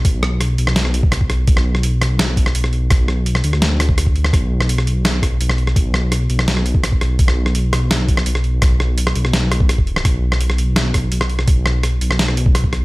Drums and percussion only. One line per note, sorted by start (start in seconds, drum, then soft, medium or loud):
0.05 kick loud
0.05 closed hi-hat medium
0.23 cross-stick medium
0.41 cross-stick medium
0.41 closed hi-hat medium
0.58 closed hi-hat medium
0.67 cross-stick medium
0.76 snare loud
0.76 closed hi-hat medium
0.85 cross-stick medium
0.94 closed hi-hat medium
1.03 kick loud
1.12 cross-stick medium
1.12 closed hi-hat medium
1.21 kick medium
1.30 cross-stick medium
1.30 closed hi-hat soft
1.47 kick loud
1.47 closed hi-hat medium
1.57 cross-stick medium
1.75 cross-stick soft
1.83 closed hi-hat medium
2.02 cross-stick medium
2.02 closed hi-hat medium
2.19 cross-stick medium
2.19 snare loud
2.19 closed hi-hat medium
2.37 kick medium
2.37 closed hi-hat medium
2.46 cross-stick medium
2.55 closed hi-hat medium
2.64 cross-stick medium
2.73 closed hi-hat soft
2.90 kick loud
2.90 cross-stick medium
2.90 closed hi-hat medium
3.08 cross-stick medium
3.26 closed hi-hat medium
3.35 cross-stick medium
3.44 closed hi-hat medium
3.53 cross-stick soft
3.62 snare loud
3.62 closed hi-hat medium
3.80 cross-stick medium
3.80 closed hi-hat medium
3.89 kick loud
3.98 cross-stick medium
3.98 closed hi-hat medium
4.07 kick medium
4.16 closed hi-hat soft
4.24 cross-stick medium
4.33 kick loud
4.33 cross-stick medium
4.33 closed hi-hat medium
4.60 cross-stick medium
4.69 closed hi-hat medium
4.78 cross-stick medium
4.87 closed hi-hat medium
5.05 cross-stick medium
5.05 snare loud
5.05 closed hi-hat medium
5.22 kick medium
5.22 cross-stick medium
5.22 closed hi-hat medium
5.41 closed hi-hat medium
5.49 cross-stick medium
5.58 closed hi-hat soft
5.67 cross-stick soft
5.76 kick loud
5.76 closed hi-hat medium
5.94 cross-stick medium
6.12 cross-stick medium
6.12 closed hi-hat medium
6.30 closed hi-hat medium
6.39 cross-stick medium
6.48 snare loud
6.48 closed hi-hat medium
6.57 cross-stick medium
6.66 closed hi-hat medium
6.75 kick loud
6.84 cross-stick medium
6.84 closed hi-hat medium
6.92 kick medium
7.01 cross-stick medium
7.01 closed hi-hat soft
7.19 kick loud
7.19 closed hi-hat medium
7.28 cross-stick medium
7.46 cross-stick soft
7.55 closed hi-hat medium
7.73 cross-stick medium
7.73 closed hi-hat medium
7.91 cross-stick medium
7.91 snare loud
7.91 closed hi-hat medium
8.08 kick medium
8.08 closed hi-hat medium
8.17 cross-stick medium
8.26 closed hi-hat medium
8.35 cross-stick medium
8.44 closed hi-hat soft
8.62 kick loud
8.62 cross-stick medium
8.62 closed hi-hat medium
8.80 cross-stick medium
8.98 closed hi-hat medium
9.07 cross-stick medium
9.15 closed hi-hat medium
9.25 cross-stick medium
9.33 snare loud
9.33 closed hi-hat medium
9.52 cross-stick medium
9.52 closed hi-hat medium
9.60 kick loud
9.69 cross-stick medium
9.69 closed hi-hat medium
9.78 kick medium
9.87 closed hi-hat soft
9.96 cross-stick medium
10.05 kick loud
10.05 cross-stick medium
10.05 closed hi-hat medium
10.32 cross-stick medium
10.41 closed hi-hat medium
10.50 cross-stick medium
10.58 closed hi-hat medium
10.76 cross-stick medium
10.76 snare loud
10.76 closed hi-hat medium
10.94 kick medium
10.94 cross-stick medium
10.94 closed hi-hat medium
11.12 closed hi-hat medium
11.21 cross-stick medium
11.29 closed hi-hat soft
11.39 cross-stick medium
11.48 kick loud
11.48 closed hi-hat medium
11.66 cross-stick medium
11.83 cross-stick medium
11.83 closed hi-hat medium
12.01 closed hi-hat medium
12.11 cross-stick medium
12.19 snare loud
12.19 closed hi-hat medium
12.28 cross-stick medium
12.37 closed hi-hat medium
12.46 kick loud
12.55 cross-stick medium
12.55 closed hi-hat medium
12.64 kick medium
12.73 cross-stick medium
12.73 closed hi-hat soft